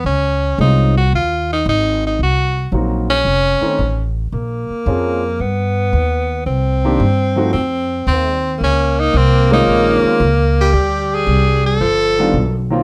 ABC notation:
X:1
M:4/4
L:1/8
Q:"Swing" 1/4=112
K:Bbm
V:1 name="Tenor saxophone"
D2 E G F E E E | G2 z D4 z | z8 | z6 C2 |
D E C E3 z =G- | =G A2 =A4 z |]
V:2 name="Grand piano"
z2 [A,CDEF] z4 z | z2 [G,B,CEG] z2 [E,=A,CDE] z2 | z2 [F,B,CDA] z4 z | z [E,B,C=D=G] z [F,=A,CE_G] z4 |
z3 [E,A,CDF]3 z2 | z4 z [E,=G,=B,=DF] z [E,_G,_B,CF] |]
V:3 name="Alto saxophone"
z8 | z8 | B,4 =B,4 | C4 C3 z |
B,8 | =G,4 F,3 z |]
V:4 name="Upright bass" clef=bass
D,,2 C,,2 E,,2 A,,,2 | C,,2 B,,,2 F,,, z =A,,,2 | B,,, z F,,2 =G,,2 E,,2 | C,,2 =G,,2 F,,2 E,,2 |
D,,2 C,,2 B,,, z D,,2 | =D,,2 C,,2 =G,,,2 =B,,,2 |]